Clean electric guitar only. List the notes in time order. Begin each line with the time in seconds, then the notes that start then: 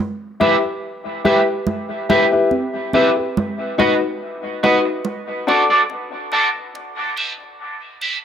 0.41 G4 B4 E5
1.25 G4 B4 E5
2.10 G4 B4 E5
2.94 G4 B4 E5
3.79 F#4 B4 D#5
4.63 F#4 B4 D#5
4.85 muted clean electric guitar stroke
5.48 F#4 A4 D5
5.70 F#4 A4 D5
6.32 F#4 A4 D5
7.17 G4 B4 E5
8.01 G4 B4 E5